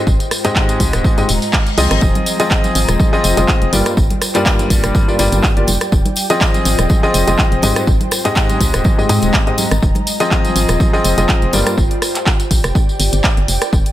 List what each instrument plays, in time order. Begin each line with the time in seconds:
Already playing: ambient pad G#3 F4 C5 D#5 G5
0.07 fm bass G#1, kick, tambourine
0.20 closed hi-hat, tambourine
0.31 cross-stick, open hi-hat, tambourine
0.39 ambient pad A#5
0.45 grand piano G#2 C4 G4 G#4 D#5, clap, closed hi-hat, tambourine
0.56 kick, clap, tambourine
0.69 closed hi-hat, tambourine
0.80 fm bass C2, kick, open hi-hat, tambourine
0.93 fm bass D#1, cross-stick, closed hi-hat, tambourine
1.04 kick, tambourine, reverse cymbal
1.18 grand piano G#2 C4 G4 G#4 D#5, closed hi-hat, tambourine
1.29 fm bass D#1, open hi-hat, tambourine
1.42 open hi-hat, tambourine
1.53 kick, clap, tambourine
1.67 closed hi-hat, tambourine
1.78 fm bass C2, grand piano F3 C4 F4 G#4 D#5, open hi-hat, tambourine
1.91 fm bass G#1, cross-stick, closed hi-hat, tambourine
2.01 fm bass F1, ambient pad F4, kick, tambourine
2.15 ambient pad C5, closed hi-hat, high conga
2.26 open hi-hat, tambourine
2.40 grand piano F3 C4 F4 G#4 D#5, closed hi-hat, tambourine
2.51 kick, clap, tambourine
2.64 closed hi-hat, tambourine, high conga
2.75 fm bass G#1, open hi-hat, tambourine
2.79 ambient pad G5
2.89 fm bass D#1, cross-stick, closed hi-hat, tambourine
3.00 kick, tambourine, high conga
3.13 grand piano F3 C4 F4 G#4 D#5, tambourine
3.24 fm bass F1, open hi-hat, tambourine
3.37 fm bass F1, grand piano F3 C4 F4 G#4 D#5, closed hi-hat, tambourine, high conga
3.48 kick, clap, tambourine
3.62 fm bass F1, closed hi-hat
3.73 fm bass G1, grand piano G2 A#3 F4 G4 D5, ambient pad G4, open hi-hat, tambourine, high conga
3.86 cross-stick, closed hi-hat, tambourine
3.97 fm bass G1, kick, tambourine
4.10 ambient pad D5, closed hi-hat, high conga
4.22 cross-stick, open hi-hat, tambourine
4.34 grand piano G2 A#3 F4 G4 D5, clap, closed hi-hat, tambourine
4.45 kick, clap, tambourine
4.59 closed hi-hat, tambourine, high conga
4.70 fm bass A#1, kick, open hi-hat, tambourine
4.84 fm bass F1, cross-stick, closed hi-hat, tambourine
4.95 kick, tambourine, high conga
5.08 grand piano G2 A#3 F4 G4 D5, tambourine
5.19 fm bass G1, grand piano G2 A#3 F4 G4 D5, open hi-hat, tambourine
5.32 fm bass G1, closed hi-hat, tambourine, high conga
5.43 kick, clap, tambourine
5.57 fm bass G1, grand piano A#3 F4 G4 D5, closed hi-hat
5.67 fm bass F1, ambient pad F4, open hi-hat, tambourine, high conga
5.81 cross-stick, closed hi-hat, tambourine
5.92 fm bass F1, kick, tambourine
6.05 closed hi-hat, high conga
6.16 ambient pad C5, open hi-hat, tambourine
6.30 grand piano F3 C4 F4 G#4 D#5, closed hi-hat, tambourine
6.41 kick, clap, tambourine
6.54 closed hi-hat, tambourine, high conga
6.65 fm bass G#1, open hi-hat, tambourine
6.79 fm bass D#1, cross-stick, closed hi-hat, tambourine
6.89 kick, tambourine, high conga
7.03 grand piano F3 C4 F4 G#4 D#5, tambourine
7.14 fm bass F1, open hi-hat, tambourine
7.27 fm bass F1, grand piano F3 C4 F4 G#4 D#5, closed hi-hat, tambourine, high conga
7.39 kick, clap, tambourine
7.52 fm bass F1, closed hi-hat
7.62 fm bass G#1, grand piano G#2 C4 G4 G#4 D#5, ambient pad G#3, open hi-hat, tambourine, high conga
7.74 ambient pad D#5, cross-stick, closed hi-hat, tambourine
7.87 fm bass G#1, kick, tambourine
8.01 closed hi-hat, high conga
8.11 cross-stick, open hi-hat, tambourine
8.25 grand piano G#2 C4 G4 G#4 D#5, clap, closed hi-hat, tambourine
8.35 kick, clap, tambourine
8.47 ambient pad A#5, closed hi-hat, tambourine, high conga
8.61 fm bass C2, kick, open hi-hat, tambourine
8.74 fm bass D#1, cross-stick, closed hi-hat, tambourine
8.84 kick, tambourine, high conga
8.98 grand piano G#2 C4 G4 G#4 D#5, tambourine
9.09 fm bass G#2, grand piano G#2 C4 G4 G#4 D#5, open hi-hat, tambourine
9.22 fm bass D#1, closed hi-hat, tambourine, high conga
9.34 kick, clap, tambourine
9.47 grand piano G#2 C4 G4 G#4 D#5, closed hi-hat
9.58 open hi-hat, tambourine, high conga
9.71 fm bass G#1, cross-stick, closed hi-hat, tambourine
9.82 fm bass F1, ambient pad F4, kick, tambourine
9.95 closed hi-hat, high conga
10.07 open hi-hat, tambourine
10.12 ambient pad C5
10.20 grand piano F3 C4 F4 G#4 D#5, closed hi-hat, tambourine
10.31 kick, clap, tambourine
10.45 closed hi-hat, tambourine, high conga
10.56 fm bass G#1, open hi-hat, tambourine
10.60 ambient pad G5
10.68 fm bass D#1, cross-stick, closed hi-hat, tambourine
10.80 kick, tambourine, high conga
10.93 grand piano F3 C4 F4 G#4 D#5, tambourine
11.04 fm bass F1, open hi-hat, tambourine
11.18 fm bass F1, grand piano F3 C4 F4 G#4 D#5, closed hi-hat, tambourine, high conga
11.29 kick, clap, tambourine
11.42 fm bass F1, closed hi-hat
11.53 fm bass G1, grand piano G2 A#3 F4 G4 D5, ambient pad G4, open hi-hat, tambourine, high conga
11.67 cross-stick, closed hi-hat, tambourine
11.78 fm bass G1, kick, tambourine
11.91 closed hi-hat
11.96 ambient pad D5
12.02 cross-stick, open hi-hat, tambourine
12.15 clap, closed hi-hat, tambourine
12.26 kick, clap, tambourine
12.40 closed hi-hat, tambourine
12.51 fm bass A#1, kick, open hi-hat, tambourine
12.64 fm bass F1, cross-stick, closed hi-hat, tambourine
12.75 kick, tambourine
12.89 tambourine
13.00 fm bass G1, open hi-hat, tambourine
13.13 fm bass G1, closed hi-hat, tambourine
13.24 kick, clap, tambourine
13.37 fm bass G1, closed hi-hat
13.48 fm bass F1, ambient pad F4, open hi-hat, tambourine
13.62 cross-stick, closed hi-hat, tambourine
13.73 fm bass F1, kick, tambourine
13.86 closed hi-hat